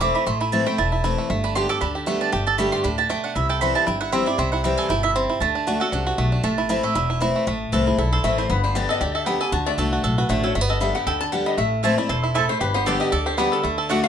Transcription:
Already playing: E1 E2 E4 A4
0.01 E3 A3 C4 E4 D6
0.15 E4 B5
0.26 A1 A2 A3 C6
0.41 E4 B5
0.52 E3 A3 C4 E4 A5
0.66 A3 C4 E4 G5
0.78 E1 E2 E4 A5
0.92 E4
1.04 E3 A3 C4 E4
1.18 A3
1.30 G1 G2 A3
1.44 D4 B5
1.55 D3 G3 B3 G4 C6
1.69 B3 G4 A4 D6
1.81 D2 D3 D4 B5
1.95 G4
2.06 D3 G3 A3 B3 G4
2.21 D4 A5
2.32 G1 G2 G4 G5
2.47 A4 A5
2.58 D3 G3 A3 B3 G4 B5
2.72 G4 C6
2.84 D2 A2 D4 B5
2.98 G4 A5
3.10 B2 A3 G5
3.24 D4 F#5
3.35 C2 C3 E4 E5
3.49 A4 G5
3.61 E3 G3 C4 E4 B5
3.75 E4 A5
3.87 G1 G2 E4 G5
4.01 E4 F#5
4.12 E3 G3 C4 E4 E5
4.26 E4 D5
4.38 C2 C3 C4 E5
4.52 E4 F#5
4.64 E3 G3 C4 E4 G5
4.78 A4 G#5
4.89 G1 B2 E4 G5
5.03 E4 E5
5.16 C3 C4
5.30 E4
5.40 D2 D3 A3 A5
5.55 D4
5.67 D3 A3 D4 F#4
5.80 D4 F#4 A4 F#5
5.92 C2 C3 D4
6.07 F#4
6.18 B1 B2 A3
6.32 D4
6.43 A1 A2 A3 A5
6.58 E4
6.69 E3 A3 C4 E4
6.83 A3 C4 E4 E5
6.95 E1 E2 E4
7.10 E4
7.20 E3 A3 C4 E4
7.36 A3
7.47 A1 A2 A3
7.72 C2 E3 A3 C4 E4 A4 B4
7.87 E4 G#4
7.98 B1 E2 E4 A4
8.12 A4 C5
8.24 A1 E3 A3 C4 E4 E5
8.38 E4 C5
8.50 G1 G2 B3 B4
8.64 D4 C5
8.75 D3 G3 B3 G4 D5
8.89 A4 D#5
9.01 D2 D3 G4 D5
9.15 A4 E5
9.26 D3 G3 B3 G4 G5
9.40 B3 G4 A4 G#5
9.52 D2 D3 F#4 A5
9.66 A3 D5
9.78 C2 D3 A3 D4 F#4 A4
9.93 F#4
10.04 B1 A2 A4
10.18 F#4 B4
10.29 A1 D3 A3 D4 F#4 C5
10.43 D4 F#4 A4 C#5
10.55 G1 G2 A3 D5
10.61 B3
10.69 A4 D#5
10.80 D3 G3 B3 G4 E5
10.95 B3 G4 F#5
11.06 D2 D3 A4 G5
11.21 D4 A5
11.32 D3 G3 B3 G4 F#5
11.46 B3 D#5
11.58 A1 A2 A3 E5
11.83 E3 A3 C4 E4 C5 A5
11.98 C4 E4 D5
12.09 E1 B2 A4 C5
12.24 E4
12.34 A2 A3 E4 A4 C5 A5
12.49 A3 C5
12.61 G1 G2 G4 B4
12.74 B3 C5
12.86 D3 G3 B3 G4 A4 D5 G5
13.00 G4 D#5
13.12 D2 D3 A4 D5
13.26 G4 C5
13.37 D3 G3 B3 G4 B4 D5 G5
13.52 A4
13.64 D2 D3 A3
13.78 A4
13.89 D3 A3 D4 F#4 D5 F#5
14.03 F#4 F5

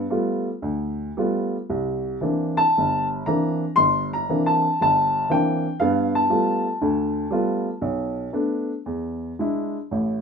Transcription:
0.10 G3 A3 B3 F4
0.62 D2
1.17 G3 A3 B3 F4
1.70 C2
2.21 E3 A#3 C4 D4
2.57 A5
2.78 G1
3.26 E3 A#3 C4 D4 A#5
3.76 G1 C6
4.13 A#5
4.29 E3 A#3 C4 D4
4.46 A5
4.81 G1 A5
5.30 E3 A#3 C4 D4 G5
5.80 G2 B3 F5
6.15 A5
6.30 G3 A3 B3 F4
6.81 D2 D3
7.31 G3 A3 B3 F4
7.82 B1
8.33 A3 B3 D4
8.86 E2
9.39 G#3 D4 E4
9.91 A1 A2

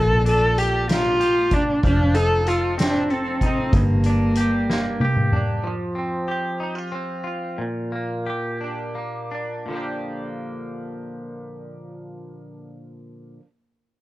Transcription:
Already playing: A#1 A#2 F3 A4
0.26 D4 A4, closed hi-hat
0.58 G4, closed hi-hat
0.89 A#3 F4, snare, closed hi-hat
1.20 G4, closed hi-hat
1.51 D4, kick, closed hi-hat
1.83 F1 F3 D4, kick, closed hi-hat
2.14 D#4 A4, closed hi-hat
2.46 F4 A4, closed hi-hat
2.78 C4 D4, snare, closed hi-hat
3.10 C4 A4, closed hi-hat
3.41 C4 D#4, kick, closed hi-hat
3.73 G1 G2 A#3, kick, closed hi-hat
4.04 D4, closed hi-hat
4.35 G4, closed hi-hat
4.69 A#3, snare
5.00 G4, high tom
5.16 mid tom
5.32 D4, mid tom
5.63 F3
5.95 C4
6.28 G4
6.60 D#4
6.75 F4
6.92 C4
7.24 F4
7.58 A#2
7.92 A#3
8.26 G4
8.61 D4
8.95 A#3
9.32 D4
9.66 A#2 D3
9.70 F3 A#3 D4
9.76 G4

